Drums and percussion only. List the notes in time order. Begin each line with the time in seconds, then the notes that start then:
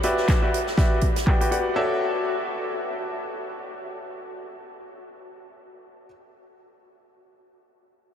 0.03 closed hi-hat
0.17 snare
0.28 kick, snare, clap, closed hi-hat
0.54 closed hi-hat
0.67 snare
0.77 kick, snare, closed hi-hat
1.01 kick, closed hi-hat
1.16 snare, closed hi-hat
1.27 kick, clap
1.41 closed hi-hat
1.52 closed hi-hat